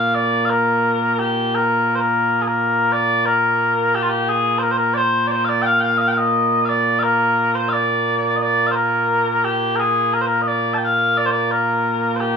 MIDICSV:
0, 0, Header, 1, 2, 480
1, 0, Start_track
1, 0, Tempo, 689655
1, 105, Time_signature, 2, 2, 24, 8
1, 8607, End_track
2, 0, Start_track
2, 0, Title_t, "Bagpipes"
2, 0, Program_c, 0, 109
2, 0, Note_on_c, 0, 46, 89
2, 0, Note_on_c, 0, 58, 89
2, 0, Note_on_c, 0, 77, 87
2, 102, Note_off_c, 0, 77, 0
2, 102, Note_on_c, 0, 74, 104
2, 315, Note_off_c, 0, 74, 0
2, 315, Note_on_c, 0, 77, 83
2, 347, Note_off_c, 0, 77, 0
2, 347, Note_on_c, 0, 70, 83
2, 828, Note_off_c, 0, 70, 0
2, 828, Note_on_c, 0, 67, 76
2, 1077, Note_off_c, 0, 67, 0
2, 1077, Note_on_c, 0, 70, 87
2, 1360, Note_off_c, 0, 70, 0
2, 1360, Note_on_c, 0, 72, 48
2, 1394, Note_off_c, 0, 72, 0
2, 1394, Note_on_c, 0, 70, 71
2, 1681, Note_off_c, 0, 70, 0
2, 1681, Note_on_c, 0, 68, 46
2, 1722, Note_off_c, 0, 68, 0
2, 1722, Note_on_c, 0, 70, 68
2, 2033, Note_off_c, 0, 70, 0
2, 2033, Note_on_c, 0, 74, 119
2, 2267, Note_off_c, 0, 74, 0
2, 2267, Note_on_c, 0, 70, 86
2, 2749, Note_off_c, 0, 70, 0
2, 2749, Note_on_c, 0, 67, 79
2, 2801, Note_off_c, 0, 67, 0
2, 2801, Note_on_c, 0, 65, 67
2, 2845, Note_off_c, 0, 65, 0
2, 2845, Note_on_c, 0, 67, 74
2, 2985, Note_off_c, 0, 67, 0
2, 2985, Note_on_c, 0, 68, 99
2, 3191, Note_off_c, 0, 68, 0
2, 3191, Note_on_c, 0, 72, 75
2, 3221, Note_off_c, 0, 72, 0
2, 3221, Note_on_c, 0, 70, 75
2, 3280, Note_off_c, 0, 70, 0
2, 3280, Note_on_c, 0, 72, 78
2, 3324, Note_off_c, 0, 72, 0
2, 3324, Note_on_c, 0, 70, 92
2, 3437, Note_off_c, 0, 70, 0
2, 3437, Note_on_c, 0, 74, 102
2, 3461, Note_off_c, 0, 74, 0
2, 3461, Note_on_c, 0, 72, 102
2, 3669, Note_off_c, 0, 72, 0
2, 3669, Note_on_c, 0, 74, 90
2, 3698, Note_off_c, 0, 74, 0
2, 3698, Note_on_c, 0, 72, 90
2, 3791, Note_off_c, 0, 72, 0
2, 3791, Note_on_c, 0, 77, 87
2, 3821, Note_off_c, 0, 77, 0
2, 3821, Note_on_c, 0, 74, 87
2, 3912, Note_off_c, 0, 74, 0
2, 3912, Note_on_c, 0, 79, 118
2, 3936, Note_off_c, 0, 79, 0
2, 3936, Note_on_c, 0, 77, 118
2, 4037, Note_off_c, 0, 77, 0
2, 4037, Note_on_c, 0, 79, 90
2, 4061, Note_off_c, 0, 79, 0
2, 4061, Note_on_c, 0, 77, 108
2, 4160, Note_off_c, 0, 77, 0
2, 4160, Note_on_c, 0, 75, 73
2, 4176, Note_off_c, 0, 75, 0
2, 4176, Note_on_c, 0, 77, 108
2, 4229, Note_off_c, 0, 77, 0
2, 4229, Note_on_c, 0, 79, 69
2, 4260, Note_off_c, 0, 79, 0
2, 4260, Note_on_c, 0, 77, 69
2, 4298, Note_off_c, 0, 77, 0
2, 4298, Note_on_c, 0, 75, 102
2, 4630, Note_off_c, 0, 75, 0
2, 4630, Note_on_c, 0, 77, 88
2, 4656, Note_off_c, 0, 77, 0
2, 4656, Note_on_c, 0, 74, 88
2, 4867, Note_off_c, 0, 74, 0
2, 4867, Note_on_c, 0, 77, 104
2, 4894, Note_off_c, 0, 77, 0
2, 4894, Note_on_c, 0, 70, 104
2, 5255, Note_off_c, 0, 70, 0
2, 5255, Note_on_c, 0, 72, 88
2, 5351, Note_off_c, 0, 72, 0
2, 5351, Note_on_c, 0, 77, 93
2, 5378, Note_off_c, 0, 77, 0
2, 5378, Note_on_c, 0, 74, 93
2, 5820, Note_off_c, 0, 74, 0
2, 5820, Note_on_c, 0, 75, 69
2, 5863, Note_off_c, 0, 75, 0
2, 5863, Note_on_c, 0, 74, 106
2, 6034, Note_off_c, 0, 74, 0
2, 6034, Note_on_c, 0, 77, 71
2, 6062, Note_off_c, 0, 77, 0
2, 6062, Note_on_c, 0, 72, 71
2, 6092, Note_off_c, 0, 72, 0
2, 6092, Note_on_c, 0, 70, 87
2, 6574, Note_off_c, 0, 70, 0
2, 6574, Note_on_c, 0, 67, 82
2, 6791, Note_off_c, 0, 67, 0
2, 6791, Note_on_c, 0, 70, 96
2, 6818, Note_off_c, 0, 70, 0
2, 6818, Note_on_c, 0, 68, 96
2, 7053, Note_off_c, 0, 68, 0
2, 7053, Note_on_c, 0, 70, 88
2, 7108, Note_off_c, 0, 70, 0
2, 7108, Note_on_c, 0, 72, 73
2, 7145, Note_off_c, 0, 72, 0
2, 7145, Note_on_c, 0, 70, 84
2, 7251, Note_off_c, 0, 70, 0
2, 7251, Note_on_c, 0, 75, 71
2, 7292, Note_off_c, 0, 75, 0
2, 7292, Note_on_c, 0, 74, 96
2, 7475, Note_off_c, 0, 74, 0
2, 7475, Note_on_c, 0, 81, 63
2, 7502, Note_off_c, 0, 81, 0
2, 7502, Note_on_c, 0, 79, 63
2, 7547, Note_off_c, 0, 79, 0
2, 7547, Note_on_c, 0, 77, 94
2, 7777, Note_off_c, 0, 77, 0
2, 7777, Note_on_c, 0, 74, 113
2, 7835, Note_off_c, 0, 74, 0
2, 7835, Note_on_c, 0, 72, 86
2, 7869, Note_off_c, 0, 72, 0
2, 7869, Note_on_c, 0, 74, 99
2, 8012, Note_off_c, 0, 74, 0
2, 8012, Note_on_c, 0, 70, 78
2, 8463, Note_off_c, 0, 70, 0
2, 8463, Note_on_c, 0, 72, 68
2, 8494, Note_off_c, 0, 72, 0
2, 8494, Note_on_c, 0, 67, 68
2, 8607, Note_off_c, 0, 46, 0
2, 8607, Note_off_c, 0, 58, 0
2, 8607, Note_off_c, 0, 67, 0
2, 8607, End_track
0, 0, End_of_file